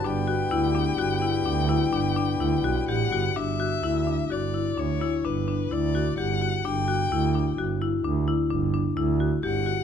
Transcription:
X:1
M:7/4
L:1/8
Q:1/4=128
K:G
V:1 name="Violin"
g12 f2 | e4 d2 ^c2 B2 d2 f2 | g4 z8 f2 |]
V:2 name="Marimba"
D F E D F E D E D D E F G F | D F E D F E D E D D E F G F | D F E D F E D E D D E F G F |]
V:3 name="Harmonium"
[G,B,G]12- [G,B,G]2 | z12 z2 | z12 z2 |]
V:4 name="Double bass" clef=bass
G,,,2 D,,2 G,,,2 D,,2 G,,,2 D,, B,,, A,,, G,,, | G,,,2 D,,2 G,,,2 D,, z G,,,2 D,,2 G,,,2 | G,,,2 D,,2 G,,,2 D,, z G,,,2 D,,2 G,,,2 |]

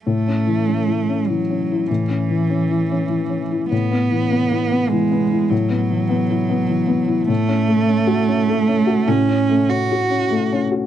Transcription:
X:1
M:3/4
L:1/8
Q:1/4=99
K:A
V:1 name="Felt piano"
(3A,, C E, (3C E C (3E, C E | (3A,, C E, (3C E C (3E, C E | (3A,, B, E, (3B, E B, (3E, B, E | (3A,, B, E, (3B, E B, (3E, B, E |
(3A,, C A, (3C F C (3A, C F | (3A,, C A, (3C F C (3A, C F |]
V:2 name="Cello"
A,4 F,2 | E,6 | B,4 G,2 | F,6 |
A,6 | C2 F3 z |]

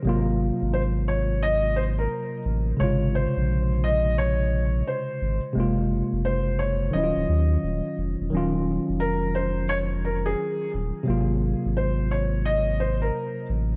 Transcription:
X:1
M:4/4
L:1/16
Q:"Swing 16ths" 1/4=87
K:Ebdor
V:1 name="Felt piano"
z4 c2 d2 e2 c B3 z2 | d2 c4 e2 d4 c3 z | z4 c2 d2 e6 z2 | z4 B2 c2 d2 B A3 z2 |
z4 c2 d2 e2 c B3 z2 |]
V:2 name="Tine electric piano" clef=bass
[C,G,B,F]16 | [C,D,A,F]16 | [C,A,B,F]8 [E,G,D_F=F]8 | [E,G,DF]16 |
[C,G,B,F]16 |]
V:3 name="Sub bass" clef=bass
A,,,3 A,,,8- A,,, z2 =A,,,2 | A,,,3 B,,,8- B,,, z2 A,,, z | G,,,3 G,,,4- G,,, E,,, E,,, E,,2 E,,, z F,,, _F,,, | E,,,3 F,,,8- F,,, z2 E,,, z |
A,,,3 A,,,8- A,,, z2 =A,,,2 |]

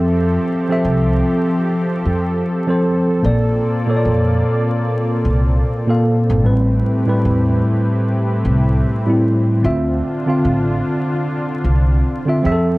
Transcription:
X:1
M:4/4
L:1/16
Q:"Swing 16ths" 1/4=75
K:Dm
V:1 name="Analog synth pad"
[F,CGA]16 | [B,CFd]16 | [A,EG=B]16 | [D,DF]12- [D,DF]2 [F,CGA]2 |]
V:2 name="Tine electric piano"
[F,CAe]2 z [F,CAe]4- [F,CAe] z4 z [F,CAc]2 z | [B,,B,Ad]2 z [B,,B,A^cd]4- [B,,B,Acd] z4 z [B,,B,Af]2 z | [A,,G,C=B]2 z [A,,G,CB]4- [A,,G,CB] z4 z [A,,G,CE]2 z | [D,CFe]2 z [D,CFf]4- [D,CFf] z4 z [D,CFe] [F,C^GAe]2 |]
V:3 name="Upright bass" clef=bass
F,,2 z2 C,,2 z4 F,,2 z4 | B,,,2 z2 F,,2 z4 C,,2 z3 G,,, | A,,,2 z2 E,,2 z4 C,,2 z4 | D,,2 z2 A,,,2 z4 C,,2 z2 F,,2 |]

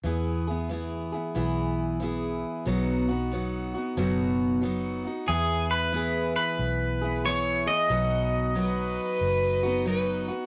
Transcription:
X:1
M:4/4
L:1/8
Q:"Swing" 1/4=92
K:E
V:1 name="Fiddle"
z8 | z8 | z8 | z2 B4 B z |]
V:2 name="Pedal steel guitar"
z8 | z8 | G B2 B3 c d- | d6- d z |]
V:3 name="Steel-string acoustic guitar"
[E,B,EG] [B,EG] [E,B,EG] [B,EG] [E,B,EG]2 [E,B,EG]2 | [B,,F,B,DF] [B,DF] [F,B,DF] [B,DF] [B,,F,B,DF]2 [F,B,DF] [B,DF] | [E,B,EG]2 [E,B,EG]3 [B,EG] [E,B,EG] [B,EG] | [B,,F,B,DF]2 [F,B,DF]3 [B,DF] [F,B,DF] [B,DF] |]
V:4 name="Fingered electric bass" clef=bass
E,,4 B,,,4 | B,,,4 F,,,4 | E,,4 B,,,4 | B,,,4 F,,,4 |]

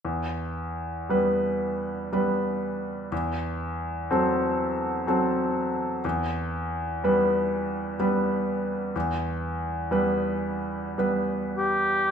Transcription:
X:1
M:3/4
L:1/8
Q:1/4=61
K:Em
V:1 name="Oboe"
z6 | z6 | z6 | z4 z G |]
V:2 name="Grand piano"
E,,2 [G,B,B]2 [G,B,B]2 | E,,2 [F,CA]2 [F,CA]2 | E,,2 [G,B,B]2 [G,B,B]2 | E,,2 [G,B,B]2 [G,B,B]2 |]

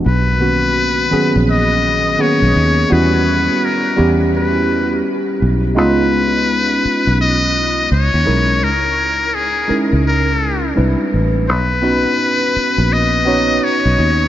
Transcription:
X:1
M:4/4
L:1/16
Q:"Swing 16ths" 1/4=84
K:B
V:1 name="Muted trumpet"
B8 d4 c4 | B4 A2 z2 B4 z4 | B8 d4 c4 | A4 G2 z2 A4 z4 |
B8 d4 c4 |]
V:2 name="Tine electric piano"
z2 [D,A,B,CF]2 z2 [D,F,B,CG]2 z4 [D,A,B,CG]2 z2 | [=G,B,CEF]2 z4 [G,B,CE=G]2 z8 | [G,B,CD^E]2 z12 [G,CD=EA]2 | z6 [G,CDEA]6 [=G,=C=DEB]2 z2 |
z2 [B,CDFB]6 z2 [B,CDFc]6 |]
V:3 name="Fingered electric bass" clef=bass
B,,,6 z A,,,4- A,,, z B,,, D,,2 | E,,4 z2 E,,6 z2 B,,,2 | C,,6 z B,,,4- B,,, C,, D,, B,,,2 | C,,6 z C,,4- C,, =C,, z =A,,,2 |
B,,,4 z3 A,,,4- A,,, z B,,, D,,2 |]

